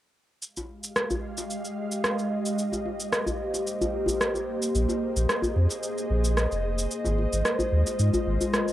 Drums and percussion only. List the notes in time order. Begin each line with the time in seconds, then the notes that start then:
0.42 shaker
0.57 djembe tone, shaker
0.84 shaker
0.96 cross-stick, shaker
1.10 djembe bass, shaker
1.38 djembe slap, shaker
1.50 shaker
1.65 shaker
1.92 shaker
2.04 cross-stick, shaker
2.19 shaker
2.46 shaker
2.59 shaker
2.72 djembe tone, shaker
2.86 djembe tone
3.00 shaker
3.13 cross-stick, shaker
3.27 djembe bass, shaker
3.54 djembe slap, shaker
3.67 shaker
3.82 djembe bass, shaker
3.94 djembe tone
4.06 djembe bass, shaker
4.21 cross-stick, shaker
4.34 djembe tone, shaker
4.62 shaker
4.75 shaker
4.89 djembe tone, shaker
5.17 shaker
5.29 cross-stick, shaker
5.42 djembe bass, shaker
5.69 djembe slap, shaker
5.83 shaker
5.98 shaker
6.24 shaker
6.37 cross-stick, shaker
6.52 shaker
6.79 shaker
6.91 shaker
7.05 djembe tone, shaker
7.18 djembe tone
7.33 shaker
7.45 cross-stick, shaker
7.59 djembe bass, shaker
7.87 djembe slap, shaker
7.99 shaker
8.14 djembe bass, shaker
8.27 djembe tone
8.41 djembe bass, shaker
8.54 cross-stick, shaker
8.68 djembe tone, shaker